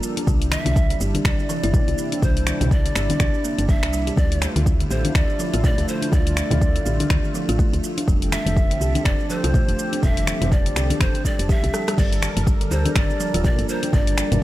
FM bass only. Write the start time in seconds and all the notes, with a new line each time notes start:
0.27 C2
0.66 C2
1.00 G1
1.25 C2
1.64 G1
1.88 C2
2.22 C2
2.61 C2
2.95 G1
3.20 C2
3.59 G1
3.83 C2
4.17 D2
4.56 D2
4.91 A1
5.15 D2
5.54 A1
5.78 D2
6.13 D2
6.51 D2
6.86 A1
7.10 D2
7.49 A1
7.73 D2
8.08 F1
8.46 F1
8.81 C2
9.05 F1
9.44 C2
9.68 F1
10.03 F1
10.41 F1
10.76 C2
11.00 F1
11.39 F1
11.63 C2
11.98 G1
12.37 G1
12.71 D2
12.96 G1
13.34 D1
13.58 G1
13.93 G1
14.32 G1